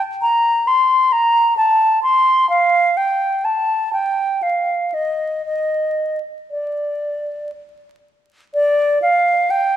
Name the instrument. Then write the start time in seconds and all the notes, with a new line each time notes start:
flute
0.22 A#5
0.67 C6
1.12 A#5
1.57 A5
2.03 C6
2.50 F5
2.97 G5
3.45 A5
3.93 G5
4.43 F5
4.94 D#5
5.46 D#5
6.51 D5
8.54 D5
9.02 F5
9.50 G5